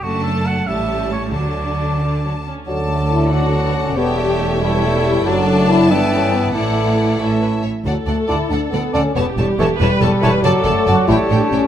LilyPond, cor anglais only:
\new Staff \with { instrumentName = "Cor anglais" } { \time 6/8 \key d \major \tempo 4. = 92 fis'8 a'8 fis''8 e''4 cis''8 | d''2~ d''8 r8 | d''4. d''4. | cis''4. cis''4. |
d''4. e''4. | d''4. cis''4 r8 | r4 d''16 r4 r16 d''16 r16 | r4 cis''16 r4 r16 cis''16 r16 |
d''4. cis''4. | }